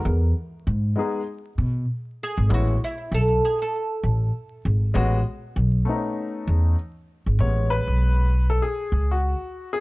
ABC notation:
X:1
M:4/4
L:1/16
Q:"Swing 16ths" 1/4=98
K:Alyd
V:1 name="Oud"
_B2 z12 G2 | F2 E2 A2 G A8- A- | A12 z4 | [K:A] z16 |]
V:2 name="Grand piano"
z6 [G,B,DG]2 z8 | [G,B,CE]2 z12 z2 | [G,B,CF]2 z4 [A,B,=C^CD]6 z4 | [K:A] c2 B4- B A G3 F4 G |]
V:3 name="Grand piano"
z16 | z16 | z16 | [K:A] [G,B,C]6 z8 z2 |]
V:4 name="Upright bass" clef=bass
E,,2 z2 G,,2 z4 B,,2 z3 G,,, | A,,,2 z2 B,,,2 z4 A,,,2 z2 G,,,2 | A,,,2 z2 B,,,2 z4 E,,2 z3 G,,, | [K:A] A,,,3 B,,,4- B,,, z2 C,,3 z3 |]